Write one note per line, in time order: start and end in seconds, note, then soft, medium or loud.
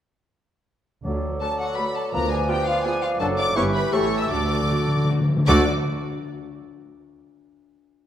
1.04 1.35 D2 soft
1.04 1.55 D3 medium
1.04 2.15 F#3 soft
1.04 1.17 A3 soft
1.04 1.17 F#4 soft
1.04 2.16 A4 soft
1.04 3.17 D5 soft
1.41 1.49 A3 soft
1.41 1.49 F#4 soft
1.41 1.48 A4 soft
1.41 1.58 A5 medium
1.59 1.77 F#4 soft
1.59 1.77 F#5 medium
1.59 1.66 F#5 soft
1.77 1.86 A3 soft
1.77 1.86 F#4 soft
1.77 1.96 B4 medium
1.77 1.95 B5 medium
1.77 1.84 B5 medium
1.96 2.13 A4 soft
1.96 2.02 A5 soft
1.96 2.14 A5 medium
2.13 2.43 D2 medium
2.13 2.43 D2 soft
2.13 2.63 D3 medium
2.13 3.20 F3 soft
2.13 2.26 B3 soft
2.13 2.26 F4 soft
2.13 2.31 A#4 medium
2.13 3.20 B4 soft
2.13 2.31 A#5 medium
2.13 2.20 A#5 medium
2.32 2.39 G#4 soft
2.32 2.49 G#5 medium
2.32 2.51 G#5 medium
2.49 2.57 B3 soft
2.49 2.57 F4 soft
2.49 2.67 G4 medium
2.49 2.67 G5 medium
2.49 2.69 G5 medium
2.66 2.85 F4 medium
2.66 2.85 F5 medium
2.66 2.87 F5 medium
2.84 2.93 B3 soft
2.84 2.93 F4 soft
2.84 2.92 G#4 medium
2.84 3.02 G#5 medium
2.84 3.04 G#5 medium
3.02 3.10 F4 medium
3.02 3.09 F5 medium
3.02 3.20 F5 medium
3.20 3.50 F#1 medium
3.20 3.50 F#2 medium
3.20 3.57 F#3 medium
3.20 3.32 D4 medium
3.20 3.29 D4 medium
3.20 3.33 F#4 medium
3.20 3.29 F#4 medium
3.20 3.28 A4 medium
3.20 3.58 A4 medium
3.20 3.58 D5 medium
3.20 3.27 A5 medium
3.20 3.26 A5 medium
3.38 3.45 D5 medium
3.38 3.56 D6 medium
3.38 3.58 D6 medium
3.56 3.87 G1 medium
3.56 3.87 G2 medium
3.56 4.32 E3 medium
3.56 3.69 B3 medium
3.56 3.65 B3 soft
3.56 3.69 E4 medium
3.56 3.64 E4 medium
3.56 4.32 G4 medium
3.56 3.95 B4 medium
3.56 3.64 C#5 medium
3.56 3.64 C#6 medium
3.56 3.74 C#6 medium
3.74 3.93 B4 medium
3.74 3.81 B5 medium
3.74 3.93 B5 medium
3.93 4.25 A1 medium
3.93 4.25 A2 medium
3.93 4.06 A3 medium
3.93 4.01 A3 soft
3.93 4.06 G4 medium
3.93 4.01 G4 soft
3.93 5.29 A4 soft
3.93 4.21 C#5 medium
3.93 3.99 C#6 medium
3.93 4.21 C#6 medium
4.21 4.31 E5 medium
4.21 4.31 E6 medium
4.21 4.26 E6 medium
4.30 4.63 D2 medium
4.30 4.38 D3 soft
4.30 5.29 D3 soft
4.30 4.45 A3 medium
4.30 5.29 F#4 medium
4.30 4.45 F#4 medium
4.30 5.09 D5 medium
4.30 5.07 D6 medium
4.39 4.46 D3 soft
4.47 4.54 D3 soft
4.63 4.70 D3 soft
4.70 4.78 D3 soft
4.70 4.78 A3 soft
4.70 4.78 F#4 soft
4.79 4.86 D3 medium
4.88 4.95 D3 medium
4.96 5.03 D3 medium
5.04 5.11 D3 medium
5.09 5.19 D3 medium
5.09 5.17 A3 soft
5.09 5.17 F#4 soft
5.20 5.27 D3 medium
5.29 5.35 D3 medium
5.37 5.44 D3 medium
5.48 5.70 D2 medium
5.48 5.64 D3 medium
5.48 5.66 D3 medium
5.48 5.70 A3 medium
5.48 5.64 A3 medium
5.48 5.70 F#4 medium
5.48 5.64 F#4 medium
5.48 5.64 A4 medium
5.48 5.70 D5 medium
5.48 5.69 D6 medium